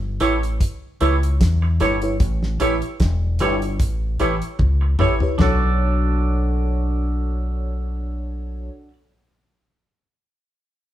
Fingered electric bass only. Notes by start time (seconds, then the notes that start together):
Already playing: G1
0.21 A1
1.01 C#2
1.41 E2
1.81 G1
2.20 A1
2.61 A1
3.00 E1
3.40 G1
3.80 A1
4.21 A1
4.60 C#2
5.00 A1
5.39 B1